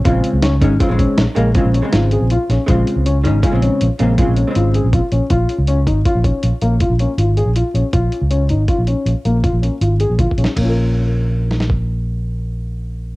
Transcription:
<<
  \new Staff \with { instrumentName = "Grand piano" } { \time 7/4 \key bes \minor \tempo 4 = 160 f'4 des'8 ees'8 f'8 des'4 bes8 f'8 des'8 f'8 aes'8 f'8 des'8 | f'4 des'8 ees'8 f'8 des'4 bes8 f'8 des'8 f'8 aes'8 f'8 des'8 | f'4 des'8 ees'8 f'8 des'4 bes8 f'8 des'8 f'8 aes'8 f'8 des'8 | f'4 des'8 ees'8 f'8 des'4 bes8 f'8 des'8 f'8 aes'8 f'8 des'8 |
<bes des' f' bes'>1.~ <bes des' f' bes'>4 | }
  \new Staff \with { instrumentName = "Hollow-body jazz guitar" } { \clef bass \time 7/4 \key bes \minor <des aes c'>4 r8 <des aes des'>16 r16 <des aes c'>16 <des aes c'>8. r8 <des aes bes>16 r16 <des aes c'>8 r16 <des aes c'>4~ <des aes c'>16 r4 | <des aes c'>4 r8 <des aes des'>16 r16 <des aes des'>16 <des aes c'>8. r8 <des aes c'>16 r16 <des aes c'>8 r16 <des aes c'>4~ <des aes c'>16 r4 | r1. r4 | r1. r4 |
r1. r4 | }
  \new Staff \with { instrumentName = "Fretless electric bass" } { \clef bass \time 7/4 \key bes \minor bes,,8 r16 des,8. aes,,8 r16 bes,,8 r16 bes,,16 r16 bes,,8. bes,,8 r16 aes,,8. bes,,8 r16 bes,,16 r16 | bes,,8 r16 des,8. aes,,8 r16 bes,,8 r16 bes,,16 r16 bes,,8. bes,,8 r16 aes,,8. bes,,8 r16 bes,,16 r16 | bes,,8 r16 des,8. aes,,8 r16 bes,,8 r16 bes,,16 r16 bes,,8. bes,,8 r16 aes,,8. bes,,8 r16 bes,,16 r16 | bes,,8 r16 des,8. aes,,8 r16 bes,,8 r16 bes,,16 r16 bes,,8. bes,,8 r16 aes,,8. bes,,8 r16 bes,,16 r16 |
bes,,1.~ bes,,4 | }
  \new DrumStaff \with { instrumentName = "Drums" } \drummode { \time 7/4 <hh bd>8 hh8 <hh sn>8 <hh bd>8 <hh bd>8 <hh bd>8 <hh sn>8 hh8 <hh bd>8 hh8 <hh sn>8 hh8 hh8 <hh sn>8 | <hh bd>8 hh8 hh8 hh8 <hh bd>8 hh8 hh8 hh8 <hh bd>8 hh8 hh8 hh8 <hh bd>8 hh8 | <hh bd>8 hh8 hh8 <hh bd>8 <hh bd>8 <hh bd>8 hh8 hh8 <hh bd>8 hh8 hh8 hh8 hh8 hh8 | <hh bd>8 hh8 hh8 hh8 <hh bd>8 hh8 hh8 hh8 <hh bd>8 hh8 hh8 hh8 \tuplet 3/2 { <hh bd tommh>16 r16 bd16 hh16 sn16 r16 } |
<bd cymr>4 r4 r8 sn16 sn16 bd4 r4 r4 r4 | }
>>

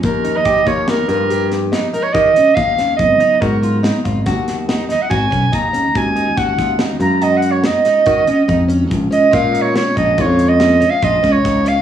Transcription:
<<
  \new Staff \with { instrumentName = "Soprano saxophone" } { \time 7/4 \key ees \minor \tempo 4 = 142 bes'8. ees''8. des''8 bes'8 bes'4 r4 bes'16 des''16 ees''4 f''4 | ees''4 bes'4 r2 r8 ees''16 ges''16 aes''4 bes''4 | aes''4 ges''4 r8 bes''8 \tuplet 3/2 { ees''8 ges''8 des''8 } ees''2~ ees''8 r8 | r8 ees''8 \tuplet 3/2 { f''4 des''8 } des''8 ees''8 \tuplet 3/2 { des''4 ees''8~ ees''4 f''8 ees''4 des''8~ } des''8 f''8 | }
  \new Staff \with { instrumentName = "Twelve-string acoustic guitar" } { \time 7/4 \key ees \minor r8 ees'8 g'8 f'8 ees'8 f'8 g'4 ees'8 ees'8 g'8 des'8 ees'8 des'8 | r8 ees'8 ges'8 f'8 ees'8 f'8 ges'4 ees'8 ees'8 ges'8 des'8 ees'8 des'8 | r8 ees'8 ges'8 f'8 ees'8 f'8 ges'4 ees'8 ees'8 ges'8 des'8 ees'8 des'8 | r8 des'8 f'8 ees'8 des'8 ees'8 f'4 des'8 des'8 f'8 des'8 ees'8 des'8 | }
  \new Staff \with { instrumentName = "Tine electric piano" } { \time 7/4 \key ees \minor <f bes ees' g'>1.~ <f bes ees' g'>4 | <des ges ces' ees'>1.~ <des ges ces' ees'>4 | <ees aes des' ges'>1.~ <ees aes des' ges'>4 | <ees aes des' f'>1.~ <ees aes des' f'>4 | }
  \new Staff \with { instrumentName = "Picked electric bass" } { \clef bass \time 7/4 \key ees \minor ees,4 ees,8 ees,4 g,2 r8 ees8 r8 ees,4 | aes,,8 r8 aes,4. aes,,8 ees,2 aes,,8 ces,8 ees,4 | ees,4 ees,8 ees,4 ges,2 r8 ees8 r8 f,4 | bes,,8 r8 bes,4. bes,,8 f,2 bes,,8 des,8 des,4 | }
  \new DrumStaff \with { instrumentName = "Drums" } \drummode { \time 7/4 <hh bd>8 hh8 <hh bd>8 <hh bd>8 <hh sn>8 hh8 hh8 <hh sn>8 <hh sn>8 hh8 <hh bd>8 hh8 <hh bd>8 <hh sn>8 | <hh bd>8 hh8 <hh bd>8 hh8 <hh sn>8 <hh bd>8 <hh bd sn>8 <hh sn>8 <hh sn>8 <hh sn>8 <hh bd>8 <hh bd>8 <hh bd>8 hh8 | <hh bd>8 hh8 <hh bd>8 <hh bd sn>8 <hh sn>8 hh8 hh8 hh8 <hh sn>8 <hh sn>8 <hh bd>8 hh8 <hh bd>8 hh8 | <hh bd>8 hh8 <hh bd>8 hh8 <hh sn>8 <hh bd>8 <hh bd>8 hh8 <hh sn>8 hh8 <hh bd>8 <hh bd sn>8 <hh bd sn>8 hh8 | }
>>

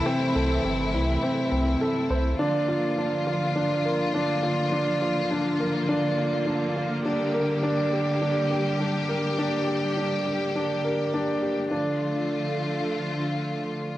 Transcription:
<<
  \new Staff \with { instrumentName = "Grand piano" } { \time 4/4 \key d \minor \tempo 4 = 103 c'8 a'8 c'8 e'8 c'8 c'8 a'8 c''8 | d'8 f'8 d'8 f'8 d'8 bes'8 d'8 f'8 | d'8 f'8 d'8 bes'8 d'8 f'8 d'8 f'8 | d'8 bes'8 d'8 g'8 d'8 g'8 d'8 bes'8 |
d'8 g'8 d'8 g'8 d'8 bes'8 d'8 g'8 | d'8 r2. r8 | }
  \new Staff \with { instrumentName = "String section" } { \clef bass \time 4/4 \key d \minor << { <e e'>1 | <f f'>1~ | <f f'>1 | <g g'>1~ |
<g g'>1 | <d f a f'>1 | } \\ { <c a>1 | <d bes>1~ | <d bes>1~ | <d bes>1~ |
<d bes>1 | r1 | } >> }
  \new Staff \with { instrumentName = "Sub bass" } { \clef bass \time 4/4 \key d \minor r8 c,8 g,,8 c,8 r8 c,8 r8 c,8 | r1 | r1 | r1 |
r1 | r1 | }
>>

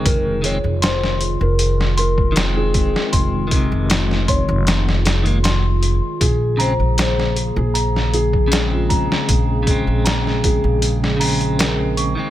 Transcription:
<<
  \new Staff \with { instrumentName = "Felt piano" } { \time 4/4 \key f \phrygian \tempo 4 = 78 bes'8 des''8 c''8. bes'8. bes'8. aes'8. | r4. des''8 r2 | aes'8 c''8 c''8. aes'8. aes'8. f'8. | r4. aes'8 r2 | }
  \new Staff \with { instrumentName = "Celesta" } { \time 4/4 \key f \phrygian aes'8 aes'8 c'''8 aes'8 aes'8 c'''8 aes'8 aes'8 | c'''8 aes'8 aes'8 c'''8 aes'8 aes'8 c'''8 aes'8 | aes'8 bes''8 aes'8 aes'8 bes''8 aes'8 aes'8 bes''8 | aes'8 aes'8 bes''8 aes'8 aes'8 bes''8 bes'8 des'''16 r16 | }
  \new Staff \with { instrumentName = "Ambient pad" } { \time 4/4 \key f \phrygian <ees aes f'>1~ | <ees aes f'>1 | <des bes aes'>1~ | <des bes aes'>1 | }
  \new Staff \with { instrumentName = "Clean electric guitar" } { \clef bass \time 4/4 \key f \phrygian <ees aes c'>8 <ees aes c'>16 r2 r16 <ees aes c'>4~ | <ees aes c'>8 <c ees aes>2 r16 <ees aes bes>16 r4 | r8 <des aes c'>16 r2 r16 <des aes c'>4~ | <des aes c'>8 <des aes c'>2 <des aes c'>4~ <des aes c'>16 <ees aes c'>16 | }
  \new Staff \with { instrumentName = "Upright bass" } { \clef bass \time 4/4 \key f \phrygian f,,8. f,,4 f,,2 r16 | f,,8. f,,4 f,,2 r16 | bes,,8. bes,,4 bes,,2 r16 | bes,,8. bes,,4 bes,,2 r16 | }
  \new DrumStaff \with { instrumentName = "Drums" } \drummode { \time 4/4 <hh bd>8 hh8 <hh sn>16 sn16 hh8 hh16 sn16 hh16 bd16 <hh sn>8 <hh bd>16 sn16 | <hh bd>8 <hh bd>8 <hh sn>16 sn16 <hh bd>8 <hh sn>16 sn16 <hh sn>16 hh16 <hh sn>8 hh8 | <hh bd>8 hh8 <hh sn>16 sn16 hh8 hh16 sn16 hh16 bd16 <hh sn>8 <hh bd>16 sn16 | <hh bd>8 <hh bd>8 <hh sn>16 sn16 <hh bd>8 hh16 sn16 hho16 hh16 <hh sn>8 hh8 | }
>>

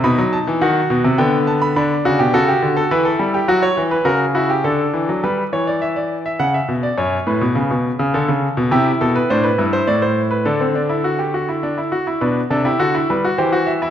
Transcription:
<<
  \new Staff \with { instrumentName = "Grand piano" } { \time 3/4 \key e \minor \tempo 4 = 104 << { b''8 a''8 fis''4 g''8 a''16 b''16 | b''8 fis'16 g'16 a'16 g'8 a'16 b'16 a'8 g'16 | fis'16 cis''8 b'16 ais'8 fis'16 g'16 a'4 | b'8 cis''16 d''16 e''16 d''8 e''16 fis''16 e''8 d''16 |
cis''8 b'4. a'4 | \key g \major g'8 a'16 b'16 c''16 b'8 c''16 d''16 c''8 b'16 | a'2~ a'8 r8 | b'8 a'16 g'16 a'8 b'8 c''8 e''8 | } \\ { dis'4 fis'4 b4 | d'4 fis'4 e'4~ | e'4 fis'8 e'8 d'4 | r2. |
r2. | e'4 d'8 e'4. | d'16 c'16 d'16 e'16 fis'16 g'16 fis'16 e'16 d'16 e'16 fis'16 e'16 | d'8 d'16 e'16 fis'16 e'8 fis'16 g'16 fis'8 e'16 | } >> }
  \new Staff \with { instrumentName = "Grand piano" } { \clef bass \time 3/4 \key e \minor b,16 fis8 e16 dis8 b,16 c16 d4 | d8 cis16 b,16 cis8 d8 e8 g8 | fis8 e8 cis4 d8 e16 fis16 | g8 e4. cis8 b,8 |
fis,8 a,16 b,16 cis16 b,8 cis16 d16 cis8 b,16 | \key g \major c8 b,8 a,8 g,8 a,4 | d2~ d8 r8 | b,8 c8 d8 g8 e4 | }
>>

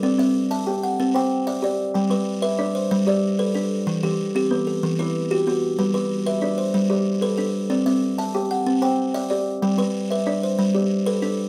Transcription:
<<
  \new Staff \with { instrumentName = "Kalimba" } { \time 12/8 \key g \major \tempo 4. = 125 << { a'8 e''4. r8 fis''4 g''4. d''4~ | d''8 b'4. r8 c''4 d''4. a'4~ | a'8 g'4. r8 a'4 b'4. fis'4~ | fis'8 b'4. r8 c''4. r4 a'4~ |
a'8 e''4. r8 fis''4 g''4. d''4~ | d''8 b'4. r8 c''4. r4 a'4 | } \\ { c'4 r8 e''4 r8 c'4 r8 e''4 r8 | g4 r8 b'4 r8 g4 r8 b'4 r8 | e4 r8 g'4 r8 e4 r8 g'4 r8 | g4 r8 b'4 r8 g4 r8 b'4 r8 |
c'4 r8 e''4 r8 c'4 r8 e''4 r8 | g4 r8 b'4 r8 g4 r8 b'4 r8 | } >> }
  \new Staff \with { instrumentName = "Kalimba" } { \time 12/8 \key g \major << { d''4 r8 a''8 g''4. g''4 d''4. | g''4 r8 e''8 d''4. d''4 a'4. | r4. c'8 b'4. b'4 fis'4. | b'4 r8 e''8 d''4. d''4 a'4. |
d''4 r8 a''8 g''4. g''4 d''4. | g''4 r8 e''8 d''4. d''4 a'4. | } \\ { r8 c'4 r8 g'4 r8 c''4 r8 g'4 | r8 g4 r8 d'4 r8 g'4 r8 d'4 | r8 e4 r8 b4 r8 e'4 r8 b4 | r8 g4 r8 d'4 r8 g'4 r8 d'4 |
r8 c'4 r8 g'4 r8 c''4 r8 g'4 | r8 g4 r8 d'4 r8 g'4 r8 d'4 | } >> }
>>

